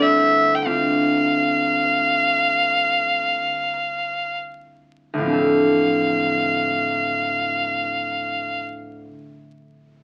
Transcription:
Already playing: D2 C4 E4
0.03 E5
0.55 G5
0.65 C4 D4 F4 F5
5.14 D2
5.18 A2 F3
5.23 C4 F5
5.29 D4 A4

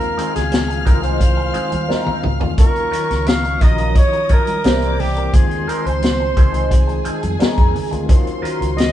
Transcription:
Already playing: D#2 D#3 G#3 C4 F4 A#4 F5 F6
0.01 closed hi-hat
0.17 G#3 C4 D#4 G#4, closed hi-hat, muted conga
0.36 C#2 G#4, snare, closed hi-hat
0.51 muted clean electric guitar stroke, snare, closed hi-hat, high conga
0.68 muted clean electric guitar stroke, closed hi-hat
0.85 C2 D#3 G#3 C4 D#4 E4 G#4 A#4, kick, closed hi-hat, muted conga, low conga
0.94 F4
1.03 G#3 C4 D#4 G#4 C5, closed hi-hat
1.20 F5, muted clean electric guitar stroke, kick, closed hi-hat, muted conga
1.37 muted clean electric guitar stroke
1.42 G#5
1.54 G#3 C4 D#4 G#4, muted fingered electric bass stroke, closed hi-hat, muted conga
1.71 D#2, muted clean electric guitar stroke, closed hi-hat, high conga
1.88 G#3 C4 D#4 A#4, snare, muted conga, high conga
2.06 D#2, high tom
2.23 C#2, muted clean electric guitar stroke, mid tom, muted conga, low conga
2.40 D2 D#3 G#3 C4 F4, muted clean electric guitar stroke, floor tom
2.58 D#2 D#3 F#3 C#4 D#4 A#4 C#5 D#5 C#6, kick, closed hi-hat, muted conga, low conga
2.66 F4
2.76 closed hi-hat
2.91 F#3 C#4 F4 A#4, closed hi-hat, muted conga
3.11 C#2, snare, closed hi-hat
3.26 F5, muted clean electric guitar stroke, snare, closed hi-hat, high conga
3.44 muted clean electric guitar stroke, closed hi-hat
3.61 A#1 D#3 F3 F#3 C#4 F4 A#4 D#5 D#6, kick, closed hi-hat, muted conga, low conga
3.68 F#3
3.78 F#3 C#4 F4 A#4, closed hi-hat
3.95 C#5, muted clean electric guitar stroke, kick, closed hi-hat, muted conga
4.13 muted clean electric guitar stroke, closed hi-hat
4.29 F#3 C#4 F4 A#4, kick, closed hi-hat, muted conga
4.47 muted clean electric guitar stroke, closed hi-hat, high conga
4.64 C2 E3 G3 A#3 C4 E4 G4 C5 D5 D6, snare, closed hi-hat, high conga
4.82 closed hi-hat
4.99 G4, muted clean electric guitar stroke, open hi-hat, muted conga, low conga
5.15 E3 A#3 C4 A#4, muted clean electric guitar stroke, closed hi-hat
5.33 D#2 D#3 G#3 C4 F4 G#4 C5 C6, kick, closed hi-hat, muted conga, low conga
5.51 closed hi-hat
5.67 F3 C4 D#4 G#4 A#4, closed hi-hat, muted conga
5.86 C#2 C5, closed hi-hat
6.02 muted clean electric guitar stroke, snare, closed hi-hat, muted conga, high conga
6.20 muted clean electric guitar stroke
6.36 C2 D#3 F3 G#3 C4 D#4 G#4, kick, closed hi-hat, low conga
6.53 F3 C4 D#4 G#4, closed hi-hat
6.70 G#4 G#5, muted clean electric guitar stroke, kick, closed hi-hat
6.87 muted clean electric guitar stroke, closed hi-hat
7.05 F3 C4 D#4 G#4, muted fingered electric bass stroke, closed hi-hat
7.22 F2, muted clean electric guitar stroke, closed hi-hat, high conga
7.39 F3 C4 D#4 A#4, muted fingered electric bass stroke, snare, closed hi-hat, muted conga, high conga
7.57 F2, kick, closed hi-hat
7.74 muted clean electric guitar stroke, open hi-hat, muted conga, low conga
7.91 D2 D#3 G#3 C4 F4, muted clean electric guitar stroke, closed hi-hat
8.09 D#2 D#3 F#3 C#4 E4 C5 C6, kick, closed hi-hat, muted conga, low conga
8.16 F4
8.27 closed hi-hat
8.42 F#3 C#4 F4 F#4 A#4, closed hi-hat, muted conga
8.61 C#2, closed hi-hat
8.76 D#5, muted clean electric guitar stroke, snare, closed hi-hat, muted conga, high conga

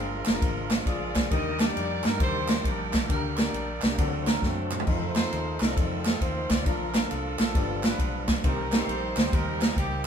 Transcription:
Already playing: G1 A#2 D3 F3 G#3 A#3 D4 F4 G#4 A#4
0.26 F1 G#3 A#3 C#4 F4 A#4, snare, clap, ride bell
0.33 D4
0.42 G#1, kick, ride bell
0.70 snare, clap, ride bell
0.86 A#1 F4 G#4 D5, kick, ride bell
1.15 kick, snare, clap, ride bell
1.31 D#2 D#3 G3 A#3 D4 D#4 G4 A#4 D5 D#5, kick, ride bell
1.60 G3 A#3 D4 D#4 G4 A#4 D5 A5, snare, clap, ride bell
1.76 F2, ride bell
2.04 G2 G3 A#3 D4 D#4 A4 A#4, snare, clap, ride bell
2.10 A#4
2.20 D#2 G4 C5, kick, ride bell
2.48 snare, clap, ride bell
2.64 A#1 D4 G4 A#4, kick, ride bell
2.93 kick, snare, clap, ride bell
3.08 D2 D3 A3 D4 G4 A#4, kick, ride bell
3.14 A#3
3.37 D4 G4 A#4 D5, snare, clap, ride bell
3.53 A#1, ride bell
3.82 C2 D4 G4 A#4, snare, clap, ride bell
3.98 D2 D3 F#3 A3 C4 D4 F#4 A4 D5, kick, ride bell
4.27 A#4, snare, clap, ride bell
4.42 F#2 C4 F#4 A4, kick, snare
4.71 clap, mid tom
4.80 floor tom
4.85 F2 D#3 F3 G#3 C4 D#4 F4 A4 C5 D#5, kick, crash
4.92 A3
5.15 C4 D#4 F4 A4 C5 D#5, snare, clap, ride bell
5.33 D#2, ride bell
5.60 C2 C4 D#4 F4 A4 A#4 C5, snare, clap, ride bell
5.68 D5
5.76 F2 C4 D#4 A4, kick, ride bell
6.05 snare, clap, ride bell
6.21 D#2 C5, kick, ride bell
6.50 D2 D5, kick, snare, clap, ride bell
6.65 A#1 A#2 D3 F3 A#3 D4 F4 A4 A#4 D5, kick, ride bell
6.94 A#3 D4 F4 A4 F5, snare, clap, ride bell
7.10 C2 D4 F4 A4, ride bell
7.38 A#1 A#3 D4 F4 A4 F5, snare, clap, ride bell
7.54 G1 G2 D3 F3 G3 B3 D4 F4 G4 D5, kick, ride bell
7.83 D4 F4 B4, snare, clap, ride bell
7.99 B1, kick, ride bell
8.28 kick, snare, clap, ride bell
8.43 C2 C3 D#3 G3 A#3 C4 D#4 G4 A#4 C5, kick, ride bell
8.72 A#3 C4 D#4 G4 A4 C5, snare, clap, ride bell
8.87 A#1, ride bell
9.16 D2 A#3 C4 D#4 G4 C5, snare, clap, ride bell
9.33 D#2 D#4 G4 A#4, kick, ride bell
9.61 snare, clap, ride bell
9.77 C#2 G4, kick, ride bell

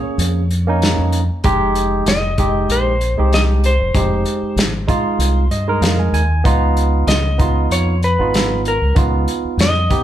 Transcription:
Already playing: A#3 C#4 G#4 C#5
0.18 F2, closed hi-hat
0.51 closed hi-hat
0.67 A#3 C#4 D#4
0.82 snare, closed hi-hat
0.99 F2
1.12 closed hi-hat
1.44 F1 G#3 D#4 G4, kick, closed hi-hat
1.75 closed hi-hat
2.06 F1 D#5, snare, closed hi-hat
2.38 G#3 D#4 G4, kick, closed hi-hat
2.69 A#1 C5, closed hi-hat
3.01 closed hi-hat
3.17 C2 G#3 D#4 G4
3.33 D#5, snare, closed hi-hat
3.64 C5, closed hi-hat
3.80 F1
3.94 F1 G#3 D#4 G4, kick, closed hi-hat
4.25 closed hi-hat
4.42 muted fingered electric bass stroke
4.56 G#1, snare, closed hi-hat
4.87 G#3 D#4 F4, kick, closed hi-hat
5.19 C2, closed hi-hat
5.50 G2 D#5, closed hi-hat
5.68 G#3 D#4 A#4
5.81 F2 F5, snare, closed hi-hat
5.99 G#5
6.12 D#2 G#5, closed hi-hat
6.44 C#2 B3 D#4 F4, kick, closed hi-hat
6.77 closed hi-hat
7.07 C#2 D#5, snare, closed hi-hat
7.38 B3 D#4 F4, kick, closed hi-hat
7.70 F2 C#5, closed hi-hat
8.03 B4, closed hi-hat
8.19 G#1 B3 D#4 F4
8.34 snare, closed hi-hat
8.65 A#4, closed hi-hat
8.82 C#2
8.95 C#2 B3 D#4 F4, kick, closed hi-hat
9.28 closed hi-hat
9.45 muted fingered electric bass stroke
9.57 F2 D#5, snare, closed hi-hat
9.90 B3 D#4 G4, kick, closed hi-hat

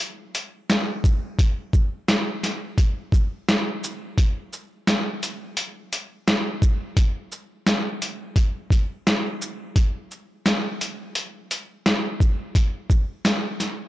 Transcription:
0.35 closed hi-hat, shaker
0.70 snare, closed hi-hat
1.04 kick, shaker
1.39 kick, closed hi-hat
1.73 kick, shaker
2.08 snare, closed hi-hat
2.43 snare, closed hi-hat, shaker
2.78 kick, closed hi-hat
3.12 kick, shaker
3.49 snare, closed hi-hat
3.84 shaker
4.18 kick, closed hi-hat
4.53 shaker
4.87 snare, closed hi-hat
5.23 closed hi-hat, shaker
5.57 closed hi-hat
5.93 closed hi-hat, shaker
6.28 snare, closed hi-hat
6.62 kick, shaker
6.97 kick, closed hi-hat
7.32 shaker
7.67 snare, closed hi-hat
8.02 closed hi-hat, shaker
8.36 kick, closed hi-hat
8.70 kick, closed hi-hat, shaker
9.07 snare, closed hi-hat
9.42 shaker
9.76 kick, closed hi-hat
10.11 shaker
10.46 snare, closed hi-hat
10.81 closed hi-hat, shaker
11.15 closed hi-hat
11.51 closed hi-hat, shaker
11.86 snare, closed hi-hat
12.20 kick, shaker
12.55 kick, closed hi-hat
12.90 kick, shaker
13.25 snare, closed hi-hat
13.60 snare, closed hi-hat, shaker

